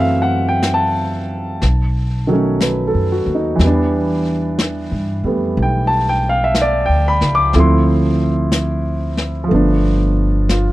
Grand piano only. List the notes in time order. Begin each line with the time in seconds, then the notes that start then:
Already playing: E3 F#3 A3 C4 E5
0.00 F5
0.22 F#5
0.48 G5
0.74 A5
2.27 D#3 F#3
2.31 A3 C#4
2.62 B4
2.88 A4
3.12 F#4
3.35 D#4
3.56 E3
3.60 G3 B3
3.67 D4
5.25 G3 A3 B3
5.62 G5
5.87 A5
6.09 G5
6.29 F5
6.44 E5
6.62 D5
6.86 G5
7.08 B5
7.35 D6
7.54 F3 A3 C4 E4
7.60 C6
9.44 F3
9.49 A3 B3
9.55 D4
10.50 F4